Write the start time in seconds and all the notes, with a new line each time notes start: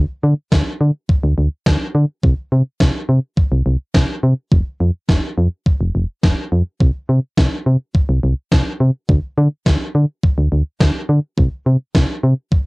0.23 D3
0.52 D2, kick, snare
0.80 D3
1.09 kick
1.23 D2
1.38 D2
1.66 D2, kick, snare
1.95 D3
2.23 C2, kick
2.52 C3
2.80 C2, kick, snare
3.09 C3
3.38 kick
3.52 C2
3.66 C2
3.95 C2, kick, snare
4.23 C3
4.52 F1, kick
4.80 F2
5.09 F1, kick, snare
5.38 F2
5.66 kick
5.81 F1
5.95 F1
6.23 F1, kick, snare
6.52 F2
6.80 C2, kick
7.09 C3
7.37 C2, kick, snare
7.66 C3
7.95 kick
8.09 C2
8.23 C2
8.52 C2, kick, snare
8.80 C3
9.09 D2, kick
9.38 D3
9.66 D2, kick, snare
9.95 D3
10.23 kick
10.38 D2
10.52 D2
10.80 D2, kick, snare
11.09 D3
11.38 C2, kick
11.66 C3
11.95 C2, kick, snare
12.23 C3
12.52 kick